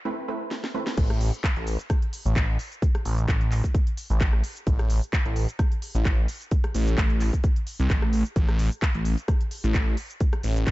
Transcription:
0.05 0.24 A3 medium
0.05 0.24 C4 medium
0.05 0.24 E4 medium
0.05 0.24 B4 loud
0.28 0.72 A3 medium
0.28 0.72 C4 medium
0.28 0.72 E4 medium
0.28 0.72 B4 medium
0.51 snare medium
0.64 snare medium
0.74 0.93 A3 medium
0.74 0.93 C4 medium
0.74 0.93 E4 medium
0.74 0.93 B4 loud
0.87 snare medium
0.97 1.31 A1 loud
0.97 kick loud
0.97 closed hi-hat medium
0.97 crash loud
0.97 shaker soft
1.10 cross-stick medium
1.10 closed hi-hat soft
1.21 open hi-hat loud
1.21 shaker medium
1.33 closed hi-hat soft
1.33 shaker soft
1.44 kick loud
1.44 clap loud
1.44 closed hi-hat medium
1.44 shaker soft
1.56 1.77 A1 loud
1.56 closed hi-hat soft
1.67 open hi-hat medium
1.67 shaker medium
1.79 closed hi-hat medium
1.79 shaker soft
1.90 kick loud
1.90 cross-stick medium
1.90 closed hi-hat medium
1.90 shaker soft
2.02 closed hi-hat medium
2.13 open hi-hat loud
2.13 shaker medium
2.25 2.57 A1 loud
2.25 closed hi-hat soft
2.25 shaker soft
2.36 kick loud
2.36 clap loud
2.36 closed hi-hat medium
2.36 shaker soft
2.59 open hi-hat medium
2.59 shaker medium
2.72 closed hi-hat soft
2.72 shaker soft
2.82 kick loud
2.82 closed hi-hat medium
2.82 shaker soft
2.95 cross-stick medium
2.95 closed hi-hat soft
3.05 3.27 A1 loud
3.05 open hi-hat loud
3.05 shaker medium
3.18 closed hi-hat soft
3.18 shaker soft
3.28 3.62 A1 loud
3.28 kick loud
3.28 clap loud
3.28 closed hi-hat medium
3.28 shaker soft
3.41 closed hi-hat soft
3.52 clap soft
3.52 open hi-hat medium
3.52 shaker medium
3.64 kick medium
3.64 closed hi-hat medium
3.64 shaker soft
3.75 kick loud
3.75 closed hi-hat medium
3.75 shaker soft
3.87 closed hi-hat medium
3.97 open hi-hat loud
3.97 shaker medium
4.10 4.42 A1 loud
4.10 closed hi-hat soft
4.10 shaker soft
4.21 kick loud
4.21 clap loud
4.21 closed hi-hat medium
4.21 shaker soft
4.33 cross-stick medium
4.44 open hi-hat loud
4.44 shaker medium
4.56 closed hi-hat soft
4.56 shaker soft
4.67 5.00 A1 loud
4.67 kick loud
4.67 closed hi-hat medium
4.67 shaker soft
4.79 cross-stick medium
4.79 closed hi-hat soft
4.90 open hi-hat loud
4.90 shaker medium
5.02 closed hi-hat soft
5.02 shaker soft
5.13 kick loud
5.13 clap loud
5.13 closed hi-hat medium
5.13 shaker soft
5.25 5.46 A1 loud
5.25 closed hi-hat soft
5.36 open hi-hat medium
5.36 shaker medium
5.49 closed hi-hat medium
5.49 shaker soft
5.59 kick loud
5.59 cross-stick medium
5.59 closed hi-hat medium
5.59 shaker soft
5.72 closed hi-hat medium
5.82 open hi-hat loud
5.82 shaker medium
5.95 6.27 A1 loud
5.95 shaker soft
6.05 kick loud
6.05 clap loud
6.05 closed hi-hat medium
6.05 shaker soft
6.28 open hi-hat loud
6.28 shaker medium
6.41 closed hi-hat soft
6.41 shaker soft
6.51 kick loud
6.51 closed hi-hat medium
6.51 shaker soft
6.64 cross-stick medium
6.64 closed hi-hat soft
6.75 6.96 A1 medium
6.75 open hi-hat loud
6.75 shaker medium
6.87 closed hi-hat soft
6.87 shaker soft
6.97 7.31 A1 loud
6.97 kick loud
6.97 clap loud
6.97 closed hi-hat medium
6.97 shaker soft
7.10 closed hi-hat soft
7.20 clap soft
7.20 open hi-hat loud
7.20 shaker medium
7.33 kick medium
7.33 closed hi-hat soft
7.33 shaker soft
7.44 kick loud
7.44 closed hi-hat medium
7.44 shaker soft
7.56 closed hi-hat medium
7.67 open hi-hat loud
7.67 shaker medium
7.79 7.88 C2 loud
7.79 closed hi-hat soft
7.79 shaker soft
7.90 8.23 A1 loud
7.90 kick loud
7.90 clap loud
7.90 closed hi-hat medium
7.90 shaker soft
8.02 cross-stick medium
8.13 open hi-hat loud
8.13 shaker medium
8.25 closed hi-hat soft
8.25 shaker soft
8.36 8.70 A1 medium
8.36 kick loud
8.36 closed hi-hat medium
8.36 shaker soft
8.48 cross-stick medium
8.48 closed hi-hat soft
8.59 open hi-hat loud
8.59 shaker medium
8.72 closed hi-hat soft
8.72 shaker soft
8.82 kick loud
8.82 clap loud
8.82 closed hi-hat medium
8.82 shaker soft
8.95 9.16 A1 loud
8.95 closed hi-hat soft
9.05 open hi-hat medium
9.05 shaker medium
9.18 closed hi-hat soft
9.18 shaker soft
9.28 kick loud
9.28 cross-stick medium
9.28 closed hi-hat medium
9.28 shaker soft
9.41 closed hi-hat medium
9.51 open hi-hat loud
9.51 shaker medium
9.64 9.96 A1 loud
9.64 closed hi-hat soft
9.64 shaker soft
9.74 kick loud
9.74 clap loud
9.74 closed hi-hat medium
9.74 shaker soft
9.97 open hi-hat medium
9.97 shaker medium
10.10 closed hi-hat soft
10.10 shaker soft
10.20 kick loud
10.20 closed hi-hat medium
10.20 shaker soft
10.33 cross-stick medium
10.33 closed hi-hat soft
10.43 10.65 A1 medium
10.43 open hi-hat loud
10.43 shaker medium
10.56 closed hi-hat soft
10.56 shaker soft
10.67 10.71 A1 loud
10.67 kick loud
10.67 clap loud
10.67 closed hi-hat medium
10.67 shaker soft

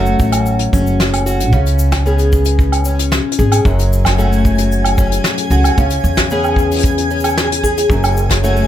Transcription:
0.00 0.13 F#1 medium
0.00 1.53 F#2 medium
0.00 1.58 A3 medium
0.00 0.73 C#4 medium
0.00 1.25 F#4 medium
0.06 shaker soft
0.19 0.66 A1 medium
0.19 kick loud
0.19 shaker medium
0.32 closed hi-hat medium
0.32 low woodblock medium
0.32 shaker soft
0.46 shaker medium
0.59 closed hi-hat medium
0.73 1.53 F#1 medium
0.73 2.06 C#4 medium
0.73 kick loud
0.73 shaker medium
0.87 shaker soft
1.00 snare medium
1.00 shaker soft
1.13 closed hi-hat medium
1.13 low woodblock medium
1.26 1.58 F#4 medium
1.26 shaker medium
1.40 closed hi-hat medium
1.40 shaker soft
1.53 3.18 C#2 medium
1.53 3.65 C#3 medium
1.53 kick loud
1.53 shaker medium
1.66 closed hi-hat soft
1.66 shaker soft
1.79 shaker medium
1.92 kick medium
1.92 snare medium
1.92 closed hi-hat medium
1.92 low woodblock medium
1.92 shaker soft
2.06 3.70 B3 medium
2.06 2.85 C#4 medium
2.06 3.37 G#4 medium
2.06 shaker medium
2.19 closed hi-hat soft
2.19 shaker soft
2.33 kick loud
2.33 shaker medium
2.45 closed hi-hat medium
2.45 shaker soft
2.59 kick loud
2.59 shaker medium
2.72 closed hi-hat medium
2.72 low woodblock medium
2.85 4.18 C#4 medium
2.85 shaker medium
2.99 closed hi-hat medium
2.99 shaker medium
3.12 snare medium
3.12 shaker medium
3.32 closed hi-hat medium
3.38 3.56 G#1 medium
3.38 3.70 G#4 medium
3.38 kick medium
3.38 shaker medium
3.52 closed hi-hat medium
3.52 low woodblock medium
3.52 shaker medium
3.65 5.17 F#1 medium
3.65 5.77 F#2 medium
3.65 8.67 G#4 medium
3.65 8.67 G#5 medium
3.65 kick loud
3.65 shaker soft
3.79 closed hi-hat soft
3.79 shaker soft
3.93 shaker medium
4.05 kick medium
4.05 snare medium
4.05 closed hi-hat medium
4.05 low woodblock medium
4.05 shaker soft
4.18 5.83 A3 medium
4.18 4.97 C#4 medium
4.18 5.50 F#4 medium
4.18 shaker medium
4.32 shaker soft
4.45 kick medium
4.45 shaker medium
4.58 closed hi-hat medium
4.58 shaker soft
4.72 shaker medium
4.85 closed hi-hat medium
4.85 low woodblock medium
4.98 6.31 C#4 medium
4.98 kick loud
4.98 shaker loud
5.12 closed hi-hat medium
5.12 shaker soft
5.24 snare medium
5.24 shaker medium
5.37 closed hi-hat medium
5.50 5.68 C#2 medium
5.50 5.83 F#4 medium
5.50 shaker medium
5.64 closed hi-hat medium
5.64 low woodblock medium
5.64 shaker soft
5.78 5.95 C#2 medium
5.78 7.90 C#3 medium
5.78 kick loud
5.78 shaker medium
5.90 closed hi-hat medium
5.90 shaker soft
6.04 7.83 E2 medium
6.04 shaker medium
6.17 kick soft
6.17 snare medium
6.17 closed hi-hat medium
6.17 shaker soft
6.30 7.95 B3 medium
6.30 7.10 C#4 medium
6.30 7.63 G#4 medium
6.30 shaker medium
6.44 low woodblock medium
6.44 shaker soft
6.56 kick medium
6.56 shaker medium
6.71 closed hi-hat soft
6.71 shaker medium
6.74 closed hi-hat soft
6.76 closed hi-hat soft
6.78 closed hi-hat soft
6.80 closed hi-hat soft
6.83 kick loud
6.83 closed hi-hat medium
6.83 shaker medium
6.98 closed hi-hat medium
7.11 8.43 C#4 medium
7.11 shaker soft
7.20 shaker medium
7.24 closed hi-hat medium
7.24 low woodblock medium
7.24 shaker soft
7.29 shaker medium
7.37 snare medium
7.37 shaker medium
7.52 closed hi-hat medium
7.64 7.95 G#4 medium
7.64 kick soft
7.64 shaker medium
7.77 closed hi-hat medium
7.77 shaker soft
7.89 8.62 F#1 medium
7.89 8.67 F#2 medium
7.89 kick medium
7.89 shaker medium
8.04 closed hi-hat soft
8.04 low woodblock medium
8.04 shaker soft
8.17 shaker medium
8.30 kick medium
8.30 snare medium
8.30 closed hi-hat medium
8.30 shaker soft
8.43 8.67 A3 medium
8.43 8.67 C#4 medium
8.43 8.67 F#4 medium
8.43 shaker medium
8.56 shaker soft

